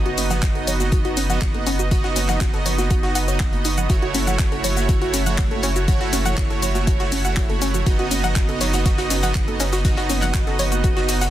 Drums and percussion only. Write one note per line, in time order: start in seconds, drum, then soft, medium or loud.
0.06 closed hi-hat soft
0.17 closed hi-hat medium
0.17 open hi-hat loud
0.17 high conga medium
0.17 cabasa medium
0.30 snare medium
0.30 closed hi-hat soft
0.30 low conga loud
0.30 cabasa soft
0.42 kick loud
0.42 snare loud
0.42 clap loud
0.42 closed hi-hat medium
0.55 closed hi-hat soft
0.67 closed hi-hat medium
0.67 open hi-hat medium
0.67 low conga medium
0.67 cabasa medium
0.80 snare medium
0.80 closed hi-hat soft
0.80 high conga medium
0.80 cabasa soft
0.92 kick loud
0.92 closed hi-hat medium
0.92 cabasa soft
1.05 closed hi-hat soft
1.17 closed hi-hat medium
1.17 open hi-hat loud
1.17 cabasa medium
1.29 snare soft
1.29 closed hi-hat soft
1.29 low conga medium
1.29 cabasa soft
1.41 kick loud
1.41 snare loud
1.41 clap loud
1.41 closed hi-hat medium
1.54 closed hi-hat soft
1.54 high conga medium
1.67 closed hi-hat medium
1.67 open hi-hat medium
1.67 cabasa medium
1.79 closed hi-hat soft
1.79 cabasa soft
1.91 kick loud
1.91 closed hi-hat medium
1.91 cabasa soft
2.04 snare soft
2.04 closed hi-hat soft
2.16 closed hi-hat medium
2.16 open hi-hat loud
2.16 high conga medium
2.16 cabasa medium
2.29 snare soft
2.29 clap soft
2.29 closed hi-hat soft
2.29 low conga medium
2.29 cabasa soft
2.41 kick loud
2.41 snare loud
2.41 clap loud
2.41 closed hi-hat medium
2.54 snare soft
2.54 closed hi-hat soft
2.66 snare soft
2.66 closed hi-hat medium
2.66 open hi-hat medium
2.66 low conga medium
2.66 cabasa medium
2.78 snare soft
2.78 closed hi-hat soft
2.78 high conga medium
2.78 cabasa soft
2.90 kick loud
2.90 closed hi-hat medium
2.90 cabasa soft
3.03 snare medium
3.03 closed hi-hat soft
3.15 closed hi-hat medium
3.15 open hi-hat loud
3.15 cabasa medium
3.28 closed hi-hat soft
3.28 cabasa soft
3.40 kick loud
3.40 snare loud
3.40 clap loud
3.40 closed hi-hat medium
3.40 cabasa soft
3.53 closed hi-hat soft
3.53 high conga medium
3.64 snare soft
3.64 closed hi-hat medium
3.64 open hi-hat medium
3.64 cabasa medium
3.78 closed hi-hat soft
3.78 low conga medium
3.78 cabasa soft
3.90 kick loud
3.90 closed hi-hat medium
3.90 cabasa soft
4.02 closed hi-hat soft
4.14 closed hi-hat medium
4.14 open hi-hat loud
4.14 high conga medium
4.14 cabasa medium
4.27 snare medium
4.27 closed hi-hat soft
4.27 low conga medium
4.27 cabasa soft
4.39 kick loud
4.39 snare loud
4.39 clap loud
4.39 closed hi-hat medium
4.39 cabasa soft
4.52 closed hi-hat soft
4.64 closed hi-hat medium
4.64 open hi-hat medium
4.64 low conga medium
4.64 cabasa medium
4.77 snare medium
4.77 closed hi-hat soft
4.77 high conga medium
4.77 cabasa soft
4.89 kick loud
4.89 closed hi-hat medium
4.89 cabasa soft
5.02 closed hi-hat soft
5.14 closed hi-hat medium
5.14 open hi-hat loud
5.14 cabasa medium
5.26 snare soft
5.26 closed hi-hat soft
5.26 low conga medium
5.26 cabasa soft
5.38 kick loud
5.38 snare loud
5.38 clap loud
5.38 closed hi-hat medium
5.38 cabasa soft
5.51 closed hi-hat soft
5.51 high conga medium
5.63 closed hi-hat medium
5.63 open hi-hat medium
5.63 cabasa medium
5.76 closed hi-hat soft
5.76 cabasa soft
5.88 kick loud
5.88 closed hi-hat medium
5.88 cabasa soft
6.00 snare medium
6.00 closed hi-hat soft
6.13 closed hi-hat medium
6.13 open hi-hat loud
6.13 high conga medium
6.13 cabasa medium
6.25 snare soft
6.25 closed hi-hat soft
6.25 low conga medium
6.25 cabasa soft
6.37 kick loud
6.37 snare loud
6.37 clap loud
6.37 closed hi-hat medium
6.37 cabasa soft
6.50 snare soft
6.50 closed hi-hat soft
6.62 snare soft
6.62 closed hi-hat medium
6.62 open hi-hat medium
6.62 low conga medium
6.62 cabasa medium
6.75 snare soft
6.75 closed hi-hat soft
6.75 high conga medium
6.75 cabasa soft
6.87 kick loud
6.87 closed hi-hat medium
6.87 cabasa soft
6.99 snare soft
6.99 closed hi-hat soft
7.12 closed hi-hat medium
7.12 open hi-hat loud
7.12 cabasa medium
7.25 closed hi-hat soft
7.25 cabasa soft
7.37 kick loud
7.37 snare loud
7.37 clap loud
7.37 closed hi-hat medium
7.37 cabasa soft
7.49 closed hi-hat soft
7.49 high conga medium
7.62 snare soft
7.62 closed hi-hat medium
7.62 open hi-hat medium
7.62 cabasa medium
7.74 closed hi-hat soft
7.74 low conga medium
7.74 cabasa soft
7.86 kick loud
7.86 closed hi-hat medium
7.86 cabasa soft
7.99 closed hi-hat soft
8.11 closed hi-hat medium
8.11 open hi-hat loud
8.11 high conga medium
8.11 cabasa medium
8.24 snare medium
8.24 closed hi-hat soft
8.24 low conga medium
8.24 cabasa soft
8.36 kick loud
8.36 snare loud
8.36 clap loud
8.36 closed hi-hat medium
8.36 cabasa soft
8.49 closed hi-hat soft
8.61 snare loud
8.61 closed hi-hat medium
8.61 open hi-hat medium
8.61 low conga medium
8.61 cabasa medium
8.73 snare loud
8.73 closed hi-hat soft
8.73 closed hi-hat medium
8.73 high conga medium
8.73 cabasa soft
8.85 kick loud
8.85 snare loud
8.85 closed hi-hat medium
8.85 cabasa soft
8.98 snare loud
8.98 closed hi-hat medium
8.98 closed hi-hat soft
9.10 snare medium
9.10 closed hi-hat medium
9.10 open hi-hat loud
9.10 cabasa medium
9.23 snare loud
9.23 closed hi-hat medium
9.23 closed hi-hat soft
9.23 low conga medium
9.23 cabasa soft
9.35 kick loud
9.35 snare loud
9.35 clap loud
9.35 closed hi-hat medium
9.35 cabasa soft
9.48 closed hi-hat soft
9.48 high conga medium
9.60 snare loud
9.60 closed hi-hat medium
9.60 open hi-hat medium
9.60 cabasa medium
9.73 snare medium
9.73 closed hi-hat soft
9.73 closed hi-hat medium
9.73 cabasa soft
9.85 kick loud
9.85 snare loud
9.85 closed hi-hat medium
9.85 cabasa soft
9.97 snare medium
9.97 closed hi-hat medium
9.97 closed hi-hat soft
10.09 snare loud
10.09 closed hi-hat medium
10.09 open hi-hat loud
10.09 high conga medium
10.09 cabasa medium
10.22 snare medium
10.22 clap soft
10.22 closed hi-hat medium
10.22 closed hi-hat soft
10.22 low conga medium
10.22 cabasa soft
10.34 kick loud
10.34 snare loud
10.34 clap loud
10.34 closed hi-hat medium
10.34 cabasa soft
10.47 snare soft
10.47 closed hi-hat soft
10.59 closed hi-hat medium
10.59 open hi-hat medium
10.59 low conga medium
10.59 cabasa medium
10.72 closed hi-hat soft
10.72 high conga medium
10.72 cabasa soft
10.84 kick loud
10.84 closed hi-hat medium
10.84 cabasa soft
10.97 snare medium
10.97 closed hi-hat soft
11.08 snare medium
11.08 closed hi-hat medium
11.08 open hi-hat loud
11.08 cabasa medium
11.21 snare loud
11.21 closed hi-hat medium
11.21 closed hi-hat soft
11.21 cabasa soft